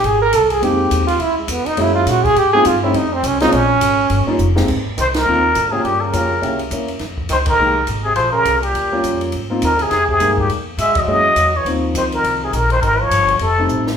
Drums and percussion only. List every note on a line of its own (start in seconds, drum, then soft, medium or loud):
0.04 ride medium
0.33 hi-hat pedal medium
0.33 ride medium
0.50 ride medium
0.63 ride medium
0.91 hi-hat pedal medium
0.91 ride medium
1.08 ride medium
1.20 ride medium
1.48 hi-hat pedal medium
1.48 ride medium
1.66 ride medium
1.77 ride medium
2.07 snare soft
2.07 hi-hat pedal medium
2.07 ride medium
2.25 kick medium
2.25 ride medium
2.36 ride medium
2.65 hi-hat pedal medium
2.65 ride medium
2.94 ride medium
3.24 hi-hat pedal medium
3.24 ride medium
3.40 snare medium
3.40 ride soft
3.52 ride medium
3.81 hi-hat pedal medium
3.81 ride medium
4.10 ride medium
4.39 hi-hat pedal medium
4.56 snare medium
4.68 kick medium
4.68 crash medium
4.98 hi-hat pedal medium
4.98 ride medium
5.14 snare medium
5.14 ride medium
5.55 hi-hat pedal soft
5.55 ride medium
5.85 ride soft
6.13 hi-hat pedal medium
6.13 ride medium
6.43 ride soft
6.59 ride soft
6.71 hi-hat pedal medium
6.71 ride medium
6.88 ride soft
6.99 snare soft
6.99 ride soft
7.18 kick soft
7.29 snare soft
7.29 hi-hat pedal soft
7.29 ride medium
7.46 kick medium
7.46 ride medium
7.87 hi-hat pedal soft
7.87 ride medium
8.16 ride medium
8.45 hi-hat pedal soft
8.45 ride medium
8.63 ride soft
8.75 ride medium
9.04 hi-hat pedal medium
9.04 ride medium
9.21 ride soft
9.32 ride medium
9.62 hi-hat pedal medium
9.62 ride medium
9.79 ride soft
9.91 snare soft
9.91 ride medium
10.09 kick soft
10.20 hi-hat pedal soft
10.20 ride medium
10.38 kick medium
10.50 ride medium
10.78 hi-hat pedal medium
10.78 ride medium
10.95 kick medium
10.95 ride medium
11.36 hi-hat pedal medium
11.36 ride medium
11.66 ride medium
11.95 hi-hat pedal medium
11.95 ride medium
12.12 ride soft
12.24 ride medium
12.53 hi-hat pedal medium
12.53 ride medium
12.70 ride soft
12.83 ride medium
13.11 hi-hat pedal medium
13.11 ride medium
13.28 ride soft
13.39 ride medium
13.69 hi-hat pedal soft
13.87 snare medium